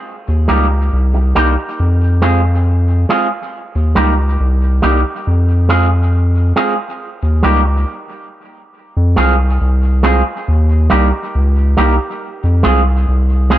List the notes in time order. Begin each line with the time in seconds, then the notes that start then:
0.28 D#2
0.48 C#2 G3 A#3 D#4 G4
0.70 muted clean electric guitar stroke
0.93 C2
1.14 muted clean electric guitar stroke
1.35 C2 G3 A#3 D#4 G4
1.80 F2
2.22 G#3 C4 F4 G#4
3.09 G#3 C4 F4 G#4
3.75 D#2
3.95 C#2 G3 A#3 D#4 G4
4.18 muted clean electric guitar stroke
4.40 C2
4.82 C2 G3 A#3 D#4 G4
5.27 F2
5.69 G#3 C4 F4 G#4
6.56 G#3 C4 F4 G#4
7.23 D#2
7.43 C#2 G3 A#3 D#4 G4
7.65 muted clean electric guitar stroke
8.97 F2
9.16 C2 G#3 C4 F4 G#4
9.61 C2
10.03 G#3 C4 F4 G#4
10.48 D#2
10.90 C2 G3 A#3 D#4 G4
11.12 muted clean electric guitar stroke
11.35 C#2
11.77 C2 G3 A#3 D#4 G4
12.44 F2
12.63 C2 G#3 C4 F4 G#4
13.08 C2
13.50 G#3 C4 F4 G#4